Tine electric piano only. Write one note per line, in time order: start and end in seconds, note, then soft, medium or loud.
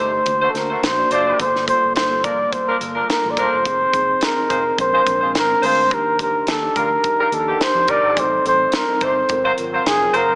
0.00 0.28 A3 medium
0.00 0.28 D#4 medium
0.00 0.28 G4 medium
0.00 0.18 A4 medium
0.00 0.26 C5 medium
0.00 0.28 D#5 medium
0.25 0.49 A#3 medium
0.25 0.49 D4 medium
0.25 0.49 F#4 medium
0.25 0.49 C5 medium
0.54 0.88 A#3 medium
0.54 0.88 D4 medium
0.54 0.89 F#4 medium
0.54 0.89 C5 medium
0.97 1.31 A#3 medium
0.97 1.31 D4 medium
0.97 1.31 F#4 medium
0.97 1.32 D5 medium
1.39 1.62 G3 medium
1.39 1.62 A#3 medium
1.39 1.62 A4 medium
1.66 2.01 G3 medium
1.66 2.01 A#3 medium
1.66 2.01 F4 medium
1.66 2.01 A4 medium
2.09 2.43 G3 medium
2.09 2.44 A#3 medium
2.09 2.44 F4 medium
2.09 2.44 A4 medium
2.51 2.74 G3 medium
2.51 2.75 A#3 medium
2.51 2.75 F4 medium
2.51 2.75 A4 medium
2.80 3.14 G3 medium
2.80 3.14 A#3 medium
2.80 3.14 F4 medium
2.80 3.15 A4 medium
3.23 3.57 G3 medium
3.23 3.57 A#3 medium
3.23 3.57 F4 medium
3.23 3.58 A4 medium
3.65 3.88 F3 medium
3.65 3.88 C4 medium
3.65 3.88 D#4 medium
3.65 3.88 G#4 medium
3.94 4.28 F3 medium
3.94 4.28 C4 medium
3.94 4.28 D#4 medium
3.94 4.28 G#4 medium
4.37 4.70 F3 medium
4.37 4.70 C4 medium
4.37 4.71 D#4 medium
4.37 4.71 A#4 medium
4.78 5.01 G#3 medium
4.78 5.01 C4 medium
4.78 5.01 D4 medium
4.78 5.01 A#4 medium
5.06 5.40 G#3 medium
5.06 5.41 C4 medium
5.06 5.41 D4 medium
5.06 5.41 A#4 medium
5.49 5.83 G#3 medium
5.49 5.83 C4 medium
5.49 5.83 D4 medium
5.49 5.83 A#4 medium
5.91 6.14 F3 medium
5.91 6.14 G4 medium
6.18 6.53 F3 medium
6.18 6.53 D4 medium
6.18 6.53 D#4 medium
6.18 6.54 G4 medium
6.62 6.95 F3 medium
6.62 6.96 D4 medium
6.62 6.96 D#4 medium
6.62 6.96 G4 medium
7.04 7.27 F3 medium
7.04 7.27 D4 medium
7.04 7.27 D#4 medium
7.04 7.27 A#4 medium
7.31 7.66 F3 medium
7.31 7.66 D4 medium
7.31 7.66 D#4 medium
7.31 7.66 G4 medium
7.75 8.08 F3 medium
7.75 8.09 D4 medium
7.75 8.09 D#4 medium
7.75 8.09 G4 medium
8.17 8.40 G3 medium
8.17 8.40 C4 medium
8.17 8.40 D#4 medium
8.17 8.40 A4 medium
8.45 8.79 G3 medium
8.45 8.79 C4 medium
8.45 8.79 D#4 medium
8.45 8.80 A4 medium
8.88 9.21 G3 medium
8.88 9.22 C4 medium
8.88 9.22 D#4 medium
8.88 9.22 A4 medium
9.30 9.53 F#3 medium
9.30 9.53 C4 medium
9.30 9.53 F4 medium
9.30 9.53 A#4 medium
9.58 9.92 F#3 medium
9.58 9.92 C4 medium
9.58 9.92 F4 medium
9.58 9.93 A#4 medium
10.01 10.34 F#3 medium
10.01 10.35 C4 medium
10.01 10.35 F4 medium
10.01 10.35 A#4 medium